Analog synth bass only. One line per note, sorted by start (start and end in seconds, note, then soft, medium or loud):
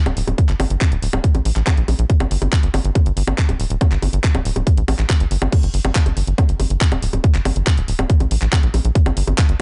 0.06 0.12 D1 medium
0.17 0.23 D1 loud
0.27 0.34 D1 medium
0.49 0.55 G1 medium
0.60 0.66 G1 loud
0.70 0.77 G1 medium
0.92 0.98 D1 medium
1.02 1.09 D1 loud
1.13 1.19 D1 medium
1.35 1.41 A1 medium
1.45 1.52 A1 loud
1.56 1.62 A1 loud
1.77 1.84 A#1 medium
1.88 1.94 A#1 loud
1.99 2.05 A#1 medium
2.20 2.27 G1 medium
2.31 2.37 G1 loud
2.42 2.48 G1 medium
2.63 2.69 G1 medium
2.74 2.80 G1 loud
2.85 2.91 G1 medium
3.06 3.12 G1 medium
3.17 3.23 G1 loud
3.27 3.34 G1 medium
3.49 3.55 D1 medium
3.60 3.66 D1 loud
3.70 3.77 D1 medium
3.92 3.98 G1 medium
4.02 4.09 G1 loud
4.13 4.19 G1 medium
4.35 4.41 D1 medium
4.45 4.52 D1 loud
4.56 4.62 D1 medium
4.77 4.84 A1 medium
4.88 4.94 A1 loud
4.99 5.05 A1 medium
5.20 5.27 G1 medium
5.31 5.37 G1 loud
5.42 5.48 G1 medium
5.63 5.69 G1 medium
5.74 5.80 G1 loud
5.85 5.91 G1 medium
6.06 6.12 G1 medium
6.17 6.23 G1 loud
6.27 6.34 G1 medium
6.49 6.55 G1 medium
6.60 6.66 G1 loud
6.70 6.77 G1 medium
6.92 6.98 D1 medium
7.02 7.09 D1 loud
7.13 7.19 D1 loud
7.35 7.41 G1 medium
7.45 7.52 G1 loud
7.56 7.62 G1 medium
7.78 7.84 D1 medium
7.88 7.94 D1 loud
7.99 8.05 D1 medium
8.20 8.27 A1 medium
8.31 8.37 A1 loud
8.42 8.48 A1 medium
8.63 8.69 A#1 medium
8.74 8.80 A#1 loud
8.85 8.91 A#1 medium
9.06 9.12 G1 medium
9.17 9.23 G1 loud
9.27 9.34 G1 medium
9.49 9.55 G1 medium